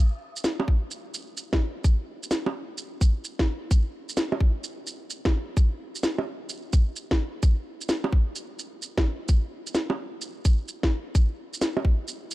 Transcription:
0.36 shaker medium
0.44 snare loud
0.44 shaker medium
0.60 low bongo medium
0.68 kick loud
0.91 shaker medium
1.14 shaker medium
1.37 shaker medium
1.53 kick medium
1.53 snare loud
1.53 low bongo soft
1.84 kick loud
1.84 shaker medium
2.23 shaker medium
2.31 snare loud
2.31 shaker medium
2.46 low bongo medium
2.78 shaker medium
3.01 kick loud
3.01 shaker medium
3.24 shaker medium
3.39 kick medium
3.39 snare loud
3.71 kick loud
3.71 shaker medium
4.09 shaker medium
4.17 snare loud
4.17 shaker medium
4.32 low bongo medium
4.40 kick loud
4.64 shaker medium
4.87 shaker medium
5.10 shaker medium
5.25 kick loud
5.25 snare loud
5.25 low bongo soft
5.57 kick loud
5.57 shaker medium
5.95 shaker medium
6.03 snare loud
6.03 shaker medium
6.18 low bongo medium
6.49 shaker medium
6.73 kick loud
6.73 shaker medium
6.96 shaker medium
7.11 kick medium
7.11 snare loud
7.43 kick loud
7.43 shaker medium
7.81 shaker medium
7.89 snare loud
7.89 shaker soft
8.04 low bongo medium
8.13 kick loud
8.36 shaker medium
8.59 shaker medium
8.82 shaker medium
8.97 kick loud
8.97 snare loud
8.97 low bongo soft
9.28 kick loud
9.28 shaker medium
9.67 shaker soft
9.75 snare loud
9.75 shaker soft
9.90 low bongo medium
10.21 shaker medium
10.45 kick loud
10.45 shaker medium
10.68 shaker medium
10.83 kick medium
10.83 snare loud
11.15 kick loud
11.15 shaker medium
11.54 shaker medium
11.62 snare medium
11.62 shaker medium
11.77 low bongo medium
11.85 kick loud
12.08 shaker medium
12.31 shaker medium

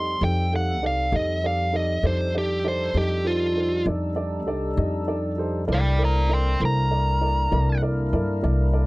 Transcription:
0.00 0.17 F2 medium
0.00 1.99 G3 medium
0.00 1.99 C4 medium
0.00 0.13 D#4 medium
0.00 1.99 D#4 medium
0.00 0.13 G4 soft
0.00 0.14 A4 soft
0.00 1.99 A4 medium
0.00 0.14 D#5 medium
0.00 0.22 C6 medium
0.21 0.81 F2 medium
0.21 0.44 D#4 soft
0.21 0.44 G4 soft
0.21 0.44 A4 soft
0.21 0.44 C5 medium
0.21 0.52 G5 medium
0.52 0.74 D#4 soft
0.52 0.75 G4 soft
0.52 0.75 A4 soft
0.52 0.75 F5 medium
0.52 0.83 F#5 medium
0.81 1.09 C2 medium
0.81 1.05 D#4 soft
0.81 1.05 G4 soft
0.81 1.05 A4 soft
0.81 1.05 D5 medium
0.86 1.13 F5 medium
1.11 1.99 F2 medium
1.11 1.34 D#4 soft
1.11 1.35 G4 soft
1.11 1.35 A4 soft
1.11 1.35 D#5 medium
1.16 1.43 D#5 medium
1.43 1.66 D#4 medium
1.43 1.66 G4 soft
1.43 1.66 A4 soft
1.43 1.66 D5 medium
1.43 1.74 F5 medium
1.73 1.96 D#4 soft
1.73 1.96 G4 soft
1.73 1.96 A4 soft
1.73 1.96 D5 medium
1.73 2.04 D#5 medium
2.03 2.90 F2 medium
2.03 5.65 G3 medium
2.03 5.65 D4 medium
2.03 5.65 D#4 medium
2.03 2.26 D#4 medium
2.03 2.26 G4 medium
2.03 5.65 A4 medium
2.03 2.26 A4 medium
2.03 2.34 C5 medium
2.03 2.27 D5 medium
2.34 2.56 D#4 medium
2.34 2.57 G4 soft
2.34 2.57 A4 soft
2.34 2.57 D5 medium
2.38 2.65 G4 medium
2.64 2.87 D#4 medium
2.64 2.87 G4 medium
2.64 2.87 A4 medium
2.64 2.87 D5 medium
2.68 2.96 C5 medium
2.94 3.82 F2 medium
2.94 3.17 D#4 soft
2.94 3.17 G4 soft
2.94 3.25 G4 medium
2.94 3.18 A4 soft
2.94 3.18 D#5 medium
3.24 3.47 D#4 soft
3.24 3.85 F4 medium
3.24 3.47 G4 soft
3.24 3.48 A4 soft
3.24 3.48 C5 medium
3.55 3.78 D#4 medium
3.55 3.78 G4 soft
3.55 3.79 A4 soft
3.55 3.78 C5 medium
3.86 4.47 F2 medium
3.86 4.09 D#4 medium
3.86 4.09 G4 soft
3.86 4.09 A4 soft
3.86 4.09 D5 medium
4.15 4.39 D#4 medium
4.15 4.39 G4 medium
4.15 4.39 A4 medium
4.15 4.39 D5 medium
4.47 4.75 C2 medium
4.47 4.70 D#4 medium
4.47 4.69 G4 medium
4.47 4.69 A4 medium
4.47 4.70 D5 medium
4.77 5.65 F2 medium
4.77 5.00 D#4 medium
4.77 5.00 G4 medium
4.77 5.00 A4 medium
4.77 5.00 D#5 medium
5.07 5.30 D#4 medium
5.07 5.30 G4 medium
5.07 5.31 A4 medium
5.07 5.31 D5 medium
5.38 5.61 D#4 medium
5.38 5.61 G4 medium
5.38 5.61 A4 medium
5.38 5.62 C5 medium
5.67 6.56 C2 medium
5.67 8.87 A#3 medium
5.67 8.87 D4 medium
5.67 5.91 E4 medium
5.67 8.87 E4 medium
5.67 5.91 A4 medium
5.67 8.87 A#4 medium
5.67 5.91 A#4 medium
5.67 5.91 D5 medium
5.73 6.01 D5 medium
5.73 6.01 G5 medium
5.97 6.21 E4 medium
5.97 6.21 A4 soft
5.97 6.21 A#4 soft
5.97 6.22 C5 medium
6.04 6.30 D5 medium
6.04 6.32 A#5 medium
6.29 6.52 E4 medium
6.29 6.52 A4 medium
6.29 6.52 A#4 medium
6.29 6.53 D5 medium
6.34 6.60 G5 medium
6.34 6.61 C6 medium
6.60 7.48 C2 medium
6.60 6.83 E4 soft
6.60 6.83 A4 soft
6.60 6.84 A#4 soft
6.60 6.84 C5 medium
6.65 7.81 A#5 medium
6.91 7.13 E4 soft
6.91 7.14 A4 soft
6.91 7.14 A#4 soft
6.91 7.14 D5 medium
7.20 7.44 E4 medium
7.20 7.44 A4 soft
7.20 7.44 A#4 soft
7.20 7.44 D5 medium
7.51 8.14 C2 medium
7.51 7.74 E4 medium
7.51 7.74 A4 medium
7.51 7.74 A#4 medium
7.51 7.75 D5 medium
7.82 8.05 E4 medium
7.82 8.05 A4 medium
7.82 8.05 A#4 medium
7.82 8.05 D5 medium
8.12 8.41 G2 medium
8.12 8.35 E4 medium
8.12 8.36 A4 medium
8.12 8.36 A#4 medium
8.12 8.36 D5 medium
8.42 8.87 C2 loud
8.42 8.65 E4 medium
8.42 8.66 A4 medium
8.42 8.66 A#4 medium
8.42 8.66 D5 medium
8.72 8.87 E4 medium
8.72 8.87 A4 medium
8.72 8.87 A#4 medium
8.72 8.87 D5 medium

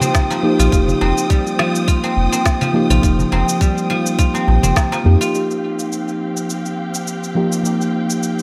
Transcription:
0.00 0.29 F3 medium
0.00 0.43 F3 medium
0.00 1.29 G3 medium
0.00 0.43 A#3 medium
0.00 1.01 C4 medium
0.00 0.44 D#4 medium
0.00 0.59 F4 loud
0.00 5.30 F4 medium
0.00 0.45 G4 loud
0.00 5.30 C5 medium
0.00 5.30 G5 medium
0.00 5.33 D#6 medium
0.00 darbuka dum medium
0.00 cabasa medium
0.14 kick loud
0.14 snare medium
0.14 darbuka tek medium
0.14 cabasa medium
0.30 1.58 F3 medium
0.30 darbuka tek medium
0.30 cabasa soft
0.43 0.69 F3 medium
0.43 0.69 A#3 medium
0.43 0.69 D#4 medium
0.43 0.70 G4 loud
0.59 0.69 A#1 loud
0.59 0.72 F4 loud
0.59 cabasa medium
0.70 0.94 F1 medium
0.70 2.70 F3 medium
0.70 2.71 A#3 medium
0.70 2.72 D#4 medium
0.70 1.88 F4 medium
0.70 2.72 G4 medium
0.70 kick loud
0.70 cabasa medium
0.88 darbuka dum medium
0.88 cabasa soft
1.01 1.12 F1 medium
1.01 2.03 C4 medium
1.01 darbuka tek medium
1.18 cabasa medium
1.30 3.60 G3 medium
1.30 kick loud
1.30 cabasa soft
1.47 cabasa soft
1.59 2.60 F3 medium
1.59 snare medium
1.75 cabasa medium
1.88 2.90 F4 medium
1.88 kick medium
1.88 cabasa soft
2.04 2.32 C4 medium
2.04 darbuka ka medium
2.04 cabasa soft
2.17 2.28 F1 loud
2.32 3.32 C4 medium
2.32 darbuka ka medium
2.32 cabasa medium
2.46 kick loud
2.46 snare medium
2.46 cabasa medium
2.61 3.89 F3 medium
2.61 darbuka dum medium
2.61 cabasa soft
2.73 3.00 F3 medium
2.73 3.00 A#3 medium
2.73 3.00 D#4 medium
2.73 3.01 G4 loud
2.73 darbuka tek soft
2.90 2.99 A#1 loud
2.90 3.03 F4 loud
2.90 darbuka ka medium
2.90 darbuka dum medium
2.90 cabasa medium
3.01 3.24 F1 loud
3.01 5.01 F3 medium
3.01 5.02 A#3 medium
3.01 5.02 D#4 medium
3.01 4.18 F4 medium
3.01 5.03 G4 medium
3.01 kick medium
3.01 cabasa medium
3.19 darbuka ka soft
3.19 darbuka dum medium
3.19 cabasa soft
3.32 3.43 F1 medium
3.32 4.34 C4 medium
3.32 darbuka tek medium
3.49 cabasa medium
3.61 5.39 G3 medium
3.61 kick loud
3.61 cabasa soft
3.78 cabasa soft
3.90 4.91 F3 medium
4.06 cabasa medium
4.19 5.20 F4 loud
4.19 kick medium
4.19 cabasa medium
4.34 4.63 C4 medium
4.34 darbuka ka medium
4.34 cabasa soft
4.48 4.59 A#1 medium
4.48 darbuka ka medium
4.48 darbuka tek medium
4.63 4.73 F1 medium
4.63 7.63 C4 medium
4.63 darbuka dum medium
4.63 cabasa medium
4.76 kick loud
4.76 snare medium
4.76 darbuka tek medium
4.76 cabasa medium
4.92 5.39 F3 medium
4.92 darbuka tek medium
4.92 cabasa soft
5.04 5.16 F2 loud
5.04 5.30 F3 medium
5.04 5.31 A#3 medium
5.04 5.31 D#4 medium
5.04 5.31 G4 loud
5.21 7.73 F4 loud
5.21 cabasa medium
5.32 7.32 F3 medium
5.32 7.32 A#3 medium
5.32 8.42 C4 medium
5.32 7.33 D#4 medium
5.32 8.42 G4 medium
5.32 8.42 F5 medium
5.32 8.42 G5 medium
5.32 cabasa soft
5.36 7.34 G4 medium
5.51 cabasa soft
5.79 cabasa medium
5.92 cabasa soft
6.08 cabasa soft
6.37 cabasa medium
6.50 cabasa soft
6.66 cabasa soft
6.94 cabasa medium
7.07 cabasa soft
7.24 cabasa soft
7.35 7.61 F3 medium
7.35 7.61 A#3 medium
7.35 7.62 D#4 medium
7.35 7.62 G4 medium
7.52 cabasa medium
7.63 8.42 F3 medium
7.63 8.42 A#3 medium
7.63 8.42 D#4 medium
7.63 cabasa soft
7.67 8.42 G4 medium
7.81 cabasa soft
8.10 cabasa medium
8.23 cabasa soft
8.39 cabasa soft

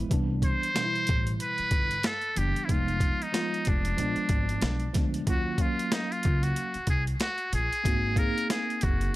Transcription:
0.09 0.51 C2 medium
0.09 0.68 E3 medium
0.09 0.69 G3 medium
0.09 0.69 B3 medium
0.09 0.70 D4 medium
0.09 kick medium
0.09 closed hi-hat medium
0.42 1.37 C5 loud
0.42 kick medium
0.42 closed hi-hat medium
0.63 closed hi-hat medium
0.74 1.92 B2 medium
0.74 1.91 E3 medium
0.74 1.91 G3 medium
0.74 0.84 D4 medium
0.74 snare loud
0.74 closed hi-hat medium
0.84 1.96 E4 medium
0.96 closed hi-hat soft
1.07 1.34 A1 loud
1.07 kick medium
1.07 closed hi-hat medium
1.27 closed hi-hat medium
1.40 2.08 B4 loud
1.40 closed hi-hat medium
1.58 muted upright bass stroke soft
1.58 closed hi-hat soft
1.71 1.97 G1 medium
1.71 kick medium
1.71 closed hi-hat medium
1.91 closed hi-hat soft
2.03 2.39 A4 loud
2.03 snare loud
2.03 closed hi-hat medium
2.21 closed hi-hat soft
2.36 2.51 F#1 medium
2.36 2.65 E3 medium
2.36 2.66 G3 medium
2.36 2.66 B3 medium
2.36 2.67 D4 medium
2.36 2.66 G4 medium
2.36 closed hi-hat medium
2.56 closed hi-hat medium
2.65 3.26 F3 medium
2.65 3.27 G#3 medium
2.65 2.73 E4 medium
2.69 3.09 F1 medium
2.69 3.27 B3 medium
2.69 3.28 D#4 medium
2.69 3.24 F4 medium
2.69 kick medium
2.69 closed hi-hat medium
2.88 closed hi-hat soft
3.00 kick medium
3.00 closed hi-hat medium
3.22 3.70 D#4 medium
3.22 closed hi-hat soft
3.32 3.95 F3 medium
3.32 3.97 G#3 medium
3.32 3.98 B3 medium
3.32 3.99 F4 medium
3.32 snare medium
3.32 closed hi-hat medium
3.54 closed hi-hat soft
3.65 3.92 F1 medium
3.65 4.96 D4 medium
3.65 kick medium
3.65 closed hi-hat medium
3.85 closed hi-hat medium
3.97 4.13 A#1 medium
3.97 4.84 F3 medium
3.97 4.85 G#3 medium
3.97 4.86 B3 medium
3.97 4.86 D4 medium
3.97 closed hi-hat medium
4.16 muted upright bass stroke soft
4.16 closed hi-hat soft
4.29 4.55 G#1 medium
4.29 kick medium
4.29 closed hi-hat medium
4.49 closed hi-hat soft
4.62 4.87 B1 medium
4.62 snare loud
4.62 closed hi-hat medium
4.80 closed hi-hat soft
4.93 5.20 D2 medium
4.93 5.23 F3 medium
4.93 5.24 G#3 medium
4.93 5.24 B3 medium
4.93 5.25 D4 medium
4.93 kick medium
4.93 snare soft
4.93 closed hi-hat medium
5.14 closed hi-hat medium
5.26 5.67 D#2 loud
5.26 5.55 F#3 medium
5.26 5.56 A#3 medium
5.26 5.57 C#4 medium
5.26 5.57 F4 medium
5.26 5.63 F#4 medium
5.26 kick medium
5.26 closed hi-hat medium
5.57 6.74 F#3 medium
5.57 6.75 A#3 medium
5.57 6.76 C#4 medium
5.57 6.76 F5 medium
5.57 kick medium
5.57 closed hi-hat medium
5.61 5.94 F4 medium
5.79 closed hi-hat soft
5.92 6.13 D#4 medium
5.92 snare loud
5.92 closed hi-hat medium
6.12 6.45 F4 medium
6.12 closed hi-hat soft
6.23 6.50 C#2 medium
6.23 kick medium
6.23 closed hi-hat medium
6.43 6.89 F#4 medium
6.43 closed hi-hat medium
6.56 closed hi-hat medium
6.74 muted upright bass stroke soft
6.74 closed hi-hat soft
6.87 7.13 C2 medium
6.87 7.04 G#4 medium
6.87 kick medium
6.87 closed hi-hat medium
7.07 closed hi-hat soft
7.20 7.51 F#4 loud
7.20 snare loud
7.20 closed hi-hat medium
7.38 closed hi-hat soft
7.53 7.67 A#1 medium
7.53 8.20 G#4 loud
7.53 closed hi-hat medium
7.73 closed hi-hat medium
7.83 8.25 G#1 loud
7.83 8.13 A#3 medium
7.83 8.14 C4 medium
7.83 8.14 D#4 medium
7.83 8.15 F#4 medium
7.83 kick medium
7.83 closed hi-hat medium
8.15 9.16 A#3 medium
8.15 9.16 C4 medium
8.15 9.16 D#4 medium
8.15 9.16 G#4 medium
8.15 8.50 A#4 loud
8.15 kick medium
8.15 closed hi-hat medium
8.38 closed hi-hat soft
8.50 8.85 G#4 medium
8.50 snare loud
8.50 closed hi-hat medium
8.70 closed hi-hat soft
8.81 9.08 F#1 medium
8.81 9.15 F#4 medium
8.81 kick medium
8.81 closed hi-hat medium
9.01 closed hi-hat medium

